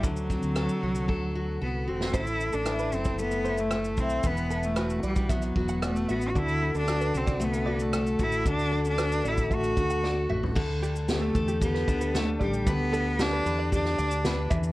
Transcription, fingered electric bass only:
\new Staff \with { instrumentName = "Fingered electric bass" } { \clef bass \time 4/4 \key d \mixolydian \tempo 4 = 114 d,8. d,8 r16 c,8 d,4 c,8 e,,8 | a,,8. a,,8. fis,,2 b,,8 | e,,4. b,,4 e,,4 a,,8 | d,8. d,8. c,2 a,,8 |
d,4. a,,4 d,4 a,,8 | d,4. e,4 d,4 a,,8 | d,4. e,4 d,4 e,8 | }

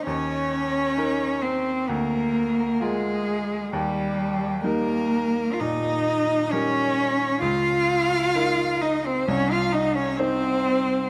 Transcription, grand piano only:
\new Staff \with { instrumentName = "Grand piano" } { \time 4/4 \key ees \mixolydian \tempo 4 = 65 ees,4 <ees' bes'>4 d,4 <f' bes'>4 | ees,4 <g ees' bes'>4 bes,4 <g ees' bes'>4 | des,4 <ees' bes'>4 c,4 <ees' c''>4 | }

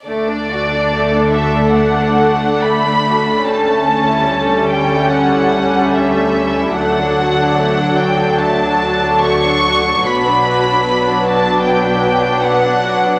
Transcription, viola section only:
\new Staff \with { instrumentName = "Viola section" } { \time 4/4 \key d \major \tempo 4 = 73 << { d'1 | cis'1 | d'1 | d'1 | } \\ { a1~ | a4 g2. | fis1 | fis1 | } >> }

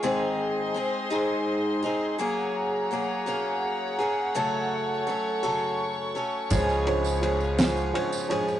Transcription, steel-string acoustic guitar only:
\new Staff \with { instrumentName = "Steel-string acoustic guitar" } { \time 6/8 \key ges \lydian \tempo 4. = 56 <aes, ees aes c' ees' aes'>4 <aes c' ees' aes'>8 <aes, ees aes c' ees' aes'>4 <aes c' ees' aes'>8 | <ges bes des' aes'>4 <ges bes des' aes'>8 <ges bes des' aes'>4 <bes des' aes'>8 | <ges, des ges a des' a'>4 <ges a des' a'>8 <ges, des ges a des' a'>4 <ges a des' a'>8 | <des f aes des' aes'>4 <f aes des' aes'>8 <des f aes des' aes'>4 <aes des' aes'>8 | }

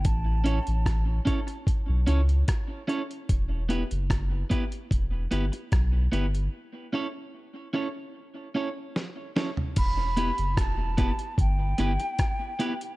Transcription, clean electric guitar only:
\new Staff \with { instrumentName = "Clean electric guitar" } { \time 4/4 \key e \dorian \tempo 4 = 74 r8 <cis' e' a' cis''>8 r8 <cis' e' a' cis''>8 r8 <cis' e' a' cis''>8 r8 <cis' e' a' cis''>8 | r8 <b e' g' b'>8 r8 <b e' g' b'>8 r8 <b e' g' b'>8 r8 <b e' g' b'>8 | r8 <cis' e' a' cis''>8 r8 <cis' e' a' cis''>8 r8 <cis' e' a' cis''>8 r8 <cis' e' a' cis''>8 | r8 <b e' g' b'>8 r8 <b e' g' b'>8 r8 <b e' g' b'>8 r8 <b e' g' b'>8 | }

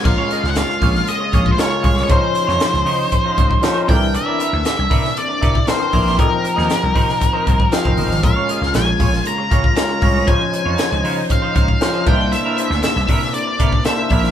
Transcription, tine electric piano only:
\new Staff \with { instrumentName = "Tine electric piano" } { \time 4/4 \key bes \minor \tempo 4 = 117 <aes des' f' bes'>4. r4. <aes des' f' bes'>8. r16 | <f des' ees' c''>4. r4. <f des' ees' c''>8 <e c' d' a' bes'>8~ | <e c' d' a' bes'>4 r2 <e c' d' bes'>8. r16 | <f c' ees' a' bes'>4. r4. <f c' ees' aes'>8. r16 |
<aes des' f' bes'>4. r4. <aes des' f' bes'>8. r16 | <f des' ees' c''>4. r4. <f des' ees' c''>8 <bes d' e' ces'' c''>8~ | <bes d' e' ces'' c''>4 r2 <bes d' ees' e' c''>8. r16 | }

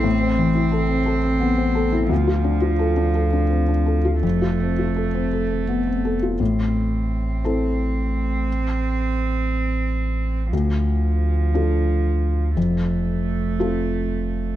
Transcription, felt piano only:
\new Staff \with { instrumentName = "Felt piano" } { \time 6/8 \key a \minor \tempo 4. = 58 <a, e'>16 c'16 e16 e'16 a'16 c'16 a'16 c'16 b16 c'16 a'16 e'16 | d,16 f'16 d'16 f'16 a'16 d'16 a'16 d'16 c'16 d'16 a'16 f'16 | f,16 f'16 c'16 f'16 a'16 c'16 a'16 c'16 b16 c'16 a'16 f'16 | a,4. <c' e' a'>4.~ |
<c' e' a'>2. | d,4. <d' f' a'>4. | f,4. <c' f' a'>4. | }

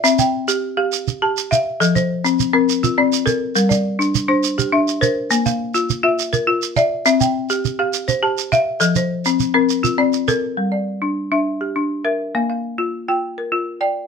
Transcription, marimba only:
\new Staff \with { instrumentName = "Marimba" } { \time 12/8 \key g \dorian \tempo 4. = 137 << { e''8 g''4. r8 f''4. a''4 f''4 | a'8 c''4. r8 bes'4 f'8 d''4 bes'4 | bes'8 d''4. r8 c''4 g'8 e''4 c''4~ | c''8 f''4. r8 e''4 bes'4. e''4 |
e''8 g''4. r8 f''4 c''8 a''4 f''4 | a'8 c''4. r8 bes'4 f'8 d''4 bes'4~ | bes'8 d''4. r8 e''4 g'4. e''4 | f''8 f''4. r8 g''4 bes'4. g''4 | } \\ { c'4 r8 g'4 g'4 r8 g'4 e''4 | f4 r8 c'4 c'4 r8 c'4 a'4 | g4 r8 d'4 d'4 r8 d'4 bes'4 | bes4 r8 f'4 f'4 r8 f'4 d''4 |
c'4 r8 g'4 g'4 r8 g'4 e''4 | f4 r8 c'4 c'4 r8 c'4 a'4 | g4 r8 d'4 d'4 r8 d'4 bes'4 | bes4 r8 f'4 f'4 r8 f'4 d''4 | } >> }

